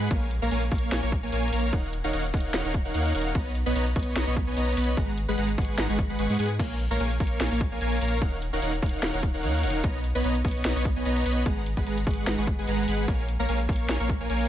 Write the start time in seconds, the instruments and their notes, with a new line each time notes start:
0.11 sub bass A#1, supersaw synth A#3 A#4 C#5 F5 G#5, kick, closed hi-hat
0.31 closed hi-hat
0.42 sub bass A#1, supersaw synth A#3 A#4 C#5 F5 A#5
0.51 sub bass A#1, supersaw synth A#3 A#4 C#5 F5 G#5, closed hi-hat
0.62 closed hi-hat
0.71 sub bass A#1, supersaw synth A#3 A#4 C#5 F5 C#6, kick, closed hi-hat
0.75 closed hi-hat
0.78 closed hi-hat
0.92 sub bass A#1, supersaw synth A#3 A#4 C#5 F5 G#5, snare, closed hi-hat
1.03 sub bass A#1, supersaw synth A#3 A#4 C#5 F5 C#6
1.12 kick, closed hi-hat
1.23 sub bass A#1, supersaw synth A#3 A#4 C#5 F5 G#5
1.32 sub bass A#1, supersaw synth A#3 A#4 C#5 F5 G#5, closed hi-hat
1.43 closed hi-hat
1.48 closed hi-hat
1.52 sub bass A#1, supersaw synth A#3 A#4 C#5 F5 A#5, closed hi-hat, open hi-hat
1.59 closed hi-hat
1.73 sub bass D#1, supersaw synth D#4 A#4 F5 F#5, kick, closed hi-hat
1.93 closed hi-hat
2.04 sub bass D#1, supersaw synth D#4 A#4 C#5 F5 F#5
2.13 sub bass D#1, supersaw synth D#4 A#4 C#5 F5 F#5, closed hi-hat
2.24 closed hi-hat
2.33 sub bass D#1, supersaw synth D#4 A#4 C#5 F5 F#5, kick, closed hi-hat
2.37 closed hi-hat
2.40 closed hi-hat
2.54 sub bass D#1, supersaw synth D#4 A#4 C#5 F5 F#5, snare, closed hi-hat
2.65 sub bass D#1, supersaw synth D#4 A#4 C#5 F5 F#5
2.74 kick, closed hi-hat
2.85 sub bass D#1, supersaw synth D#4 A#4 C#5 F5 F#5
2.94 sub bass D#2, supersaw synth D#4 A#4 C#5 F5 F#5, closed hi-hat
3.05 closed hi-hat
3.10 closed hi-hat
3.14 sub bass D#1, supersaw synth D#4 A#4 C#5 F5 F#5, closed hi-hat, open hi-hat
3.21 closed hi-hat
3.35 sub bass B1, supersaw synth B3, kick, closed hi-hat
3.55 closed hi-hat
3.66 sub bass B1, supersaw synth B3 B4 C#5 D#5 B5
3.75 sub bass B1, supersaw synth B3 B4 C#5 D#5 A#5, closed hi-hat
3.87 closed hi-hat
3.96 sub bass B1, supersaw synth B3 B4 C#5 D#5 C#6, kick, closed hi-hat
3.99 closed hi-hat
4.03 closed hi-hat
4.16 sub bass B1, supersaw synth B3 B4 C#5 D#5 A#5, snare, closed hi-hat
4.27 sub bass B1, supersaw synth B3 B4 C#5 D#5 C#6
4.36 kick, closed hi-hat
4.47 sub bass B1, supersaw synth B3 B4 C#5 D#5 G#5
4.56 sub bass B1, supersaw synth B3 B4 C#5 D#5 A#5, closed hi-hat
4.68 closed hi-hat
4.72 closed hi-hat
4.77 sub bass B1, supersaw synth B3 B4 C#5 D#5 B5, closed hi-hat, open hi-hat
4.84 closed hi-hat
4.97 sub bass G#1, supersaw synth G#3 G#4 B4 F#5 A#5, kick, closed hi-hat
5.18 closed hi-hat
5.28 sub bass G#1, supersaw synth G#3 G#4 B4 F#5 B5
5.38 sub bass G#1, supersaw synth G#3 G#4 B4 F#5 A#5, closed hi-hat
5.49 closed hi-hat
5.58 sub bass G#1, supersaw synth G#3 G#4 B4 F#5 C#6, kick, closed hi-hat
5.62 closed hi-hat
5.65 closed hi-hat
5.78 sub bass G#1, supersaw synth G#3 G#4 B4 F#5 A#5, snare, closed hi-hat
5.89 sub bass G#1, supersaw synth G#3 G#4 B4 F#5 C#6
5.99 kick, closed hi-hat
6.09 sub bass G#1, supersaw synth G#3 G#4 B4 F#5 B5
6.19 sub bass G#1, supersaw synth G#3 G#4 B4 F#5 C#6, closed hi-hat
6.30 sub bass G#2, supersaw synth G#3 G#4 B4 F#5 C#6, closed hi-hat
6.34 closed hi-hat
6.39 sub bass G#2, supersaw synth G#3 G#4 B4 F#5 G#5, closed hi-hat, open hi-hat
6.46 closed hi-hat
6.59 sub bass A#1, supersaw synth A#3 A#4 C#5 F5 G#5, kick, closed hi-hat, crash
6.80 closed hi-hat
6.91 sub bass A#1, supersaw synth A#3 A#4 C#5 F5 A#5
7.00 sub bass A#1, supersaw synth A#3 A#4 C#5 F5 G#5, closed hi-hat
7.11 closed hi-hat
7.20 sub bass A#1, supersaw synth A#3 A#4 C#5 F5 C#6, kick, closed hi-hat
7.24 closed hi-hat
7.27 closed hi-hat
7.40 sub bass A#1, supersaw synth A#3 A#4 C#5 F5 G#5, snare, closed hi-hat
7.51 sub bass A#1, supersaw synth A#3 A#4 C#5 F5 C#6
7.61 kick, closed hi-hat
7.72 sub bass A#1, supersaw synth A#3 A#4 C#5 F5 G#5
7.81 sub bass A#1, supersaw synth A#3 A#4 C#5 F5 G#5, closed hi-hat
7.92 closed hi-hat
7.97 closed hi-hat
8.01 sub bass A#1, supersaw synth A#3 A#4 C#5 F5 A#5, closed hi-hat, open hi-hat
8.08 closed hi-hat
8.22 sub bass D#1, supersaw synth D#4 A#4 C#5 F5 F#5, kick, closed hi-hat
8.42 closed hi-hat
8.53 sub bass D#1, supersaw synth D#4 A#4 C#5 F5 F#5
8.62 sub bass D#1, supersaw synth D#4 A#4 C#5 F5 F#5, closed hi-hat
8.73 closed hi-hat
8.82 sub bass D#1, supersaw synth D#4 A#4 C#5 F5 F#5, kick, closed hi-hat
8.86 closed hi-hat
8.89 closed hi-hat
9.03 sub bass D#1, supersaw synth D#4 A#4 C#5 F5 F#5, snare, closed hi-hat
9.14 sub bass D#1, supersaw synth D#4 A#4 C#5 F5 F#5
9.23 kick, closed hi-hat
9.34 sub bass D#1, supersaw synth D#4 A#4 C#5 F5 F#5
9.43 sub bass D#2, supersaw synth D#4 A#4 C#5 F5 F#5, closed hi-hat
9.54 closed hi-hat
9.59 closed hi-hat
9.63 sub bass D#1, supersaw synth D#4 A#4 C#5 F5 F#5, closed hi-hat, open hi-hat
9.70 closed hi-hat
9.84 sub bass B1, supersaw synth B3 B4 C#5 D#5 A#5, kick, closed hi-hat
10.04 closed hi-hat
10.15 sub bass B1, supersaw synth B3 B4 C#5 D#5 B5
10.24 sub bass B1, supersaw synth B3 B4 C#5 D#5 A#5, closed hi-hat
10.35 closed hi-hat
10.44 sub bass B1, supersaw synth B3 B4 C#5 D#5 C#6, kick, closed hi-hat
10.48 closed hi-hat
10.51 closed hi-hat
10.65 sub bass B1, supersaw synth B3 B4 C#5 D#5 A#5, snare, closed hi-hat
10.76 sub bass B1, supersaw synth B3 B4 C#5 D#5 C#6
10.85 kick, closed hi-hat
10.96 sub bass B1, supersaw synth B3 B4 C#5 D#5 G#5
11.05 sub bass B1, supersaw synth B3 B4 C#5 D#5 A#5, closed hi-hat
11.16 closed hi-hat
11.21 closed hi-hat
11.26 sub bass B1, supersaw synth B3 B4 C#5 D#5 B5, closed hi-hat, open hi-hat
11.33 closed hi-hat
11.46 sub bass G#1, supersaw synth G#3 G#4 B4 A#5, kick, closed hi-hat
11.66 closed hi-hat
11.77 sub bass G#1, supersaw synth G#3 G#4 B4 F#5 B5, kick
11.86 sub bass G#1, supersaw synth G#3 G#4 B4 F#5 A#5, closed hi-hat
11.98 closed hi-hat
12.07 sub bass G#1, supersaw synth G#3 G#4 B4 F#5 C#6, kick, closed hi-hat
12.10 closed hi-hat
12.14 closed hi-hat
12.27 sub bass G#1, supersaw synth G#3 G#4 B4 F#5 A#5, snare, closed hi-hat
12.38 sub bass G#1, supersaw synth G#3 G#4 B4 F#5 C#6
12.47 kick, closed hi-hat
12.58 sub bass G#1, supersaw synth G#3 G#4 B4 F#5 G#5
12.67 sub bass G#1, supersaw synth G#3 G#4 B4 F#5 A#5, closed hi-hat
12.79 closed hi-hat
12.83 closed hi-hat
12.88 sub bass G#1, supersaw synth G#3 G#4 B4 F#5 B5, closed hi-hat, open hi-hat
12.95 closed hi-hat
13.08 sub bass A#1, supersaw synth A#3 A#4 C#5 F5, kick, closed hi-hat
13.28 closed hi-hat
13.39 sub bass A#1, supersaw synth A#3 A#4 C#5 F5 A#5
13.49 sub bass A#1, supersaw synth A#3 A#4 C#5 F5 G#5, closed hi-hat
13.60 closed hi-hat
13.69 sub bass A#1, supersaw synth A#3 A#4 C#5 F5 C#6, kick, closed hi-hat
13.73 closed hi-hat
13.76 closed hi-hat
13.89 sub bass A#1, supersaw synth A#3 A#4 C#5 F5 G#5, snare, closed hi-hat
14.00 sub bass A#1, supersaw synth A#3 A#4 C#5 F5 C#6
14.09 kick, closed hi-hat
14.20 sub bass A#1, supersaw synth A#3 A#4 C#5 F5 G#5
14.30 sub bass A#1, supersaw synth A#3 A#4 C#5 F5 G#5, closed hi-hat
14.41 closed hi-hat
14.45 closed hi-hat